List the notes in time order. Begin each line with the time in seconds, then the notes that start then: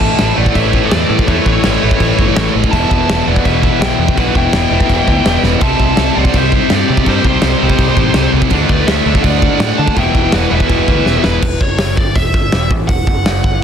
Already playing: A2 E3 A3 E5 A5
0.01 A1, kick
0.19 A1, snare, crash
0.34 A1 A2 E3 A3 D5 F#5
0.46 kick
0.55 A1 C#5 E5, kick, crash
0.73 kick
0.84 A4 C#5
0.90 E2 A4 D5, snare, crash
1.10 A2
1.19 kick
1.25 E2 A2 E3 A3 C#5, kick, crash
1.30 A4
1.46 A1 A4 C#5, kick
1.64 A1, snare, crash
1.81 A1 A2 E3 A3
1.91 kick
2.00 A1, kick, crash
2.19 G1, kick
2.36 A1, snare, crash
2.55 A1
2.64 kick
2.71 E1 E2 B2 E3 E5 A5, kick, crash
2.91 E1, kick
3.08 E1, snare, crash
3.26 E1 E2 B2 E3 D5 F#5
3.36 kick
3.45 E1 B4 E5, kick, crash
3.63 kick
3.80 B1 E5 G5, snare, crash
3.99 E2
4.08 kick
4.16 B1 E2 B2 E3 B4 F#5, kick, crash
4.35 E1 E5 G5, kick
4.53 E1, snare, crash
4.69 E1 E2 B2 E3
4.80 kick
4.89 E1, kick, crash
5.08 D2, kick
5.25 E1, snare, crash
5.43 E1, snare
5.59 C2 C3 G3 C4 E5 A5, kick, crash
5.80 C2, kick
5.97 C2, snare, crash
6.15 C2 C3 G3 C4 D5 F#5
6.25 kick
6.33 C2 E5, kick, crash
6.38 C5
6.52 kick
6.70 G2 D5, snare, crash
6.75 G4
6.90 C3
6.97 kick
7.06 G2 C3 G3 C4 G4 C5, kick, crash
7.25 C2 G4 C5, kick
7.42 C2, snare, crash
7.60 C2 C3 G3 C4
7.70 kick
7.78 C2, kick, crash
7.97 A1, kick
8.14 C2, snare, crash
8.33 C2
8.42 kick
8.50 D2 D3 A3 D4, kick, crash
8.69 D2 B4 D5, kick
8.87 D2 A4 E5, snare, crash
9.06 D2 D3 A3 D4
9.15 kick
9.23 D2 D5 F#5, kick, crash
9.42 kick
9.60 A2, snare, crash
9.78 D3 F#5 A5
9.88 kick
9.96 E1 E2 B2 E3 E5 G5, kick, crash
10.15 E1, kick
10.32 E1 B4 F#5, snare, crash
10.50 E1 E2 B2 E3 B4 E5
10.60 kick
10.69 E1, kick, crash
10.88 D2, kick
11.06 E1, snare
11.24 E1 B4, snare
11.42 E1, kick, crash
11.61 F#1 C#5, kick
11.78 C#5, snare, open hi-hat
11.97 G1 D5, kick
12.15 E1 E5, kick, open hi-hat
12.34 G1, kick
12.52 E1, snare, open hi-hat
12.71 A1, kick
12.88 E1 F#5, kick, open hi-hat
13.07 F#1, kick
13.26 snare, open hi-hat
13.44 G1, kick